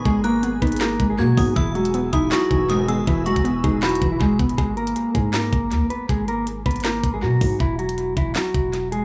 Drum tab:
HH |x-----------x-----------x-----------x--x--x--x--x-----------x-----------------------o-----------|x-----------x-----x-----x-----------x-----------x-----------x-----------x-----------x-----------|x-----------x-----x-----x-----------x-----------x---x---x---x-----------------------x-----x-----|x-----------x-----x-----x-----------x-----------x-----------x-----------x-----------x-----------|
CP |------------------------------------------------x-----------------------------------------------|------------------------------------------------x-----------------------------------------------|------------------------------------------------x-----------------------------------------------|------------------------------------------------x-----------------------------------------------|
SD |------------------------------------------------o-----------------------------------------------|------------------------------------------------o-----------------------------------------------|------------------------------------------------o-----------------------------------------------|------------------------------------------------o-----------------------------------------------|
BD |o-----------------------------------o-----------------------o-----------------------o-----------|o-----------------------------------o-----------------------o-----------------------------------|o-----------------o-----------------o-----------------------o-----------o-----------o-----------|o-----------------------------------o-----------------------o-----------------------------------|

HH |x-----------x-----------x-----------x--x--x--x--x-----------x-----------------------o-----------|x-----------x-----x-----x-----------x-----------x-----------x-----------x-----------x-----------|
CP |------------------------------------------------x-----------------------------------------------|------------------------------------------------x-----------------------------------------------|
SD |------------------------------------------------o-----------------------------------------------|------------------------------------------------o-----------------------------------------------|
BD |o-----------------------------------o-----------------------o-----------------------o-----------|o-----------------------------------o-----------------------o-----------------------------------|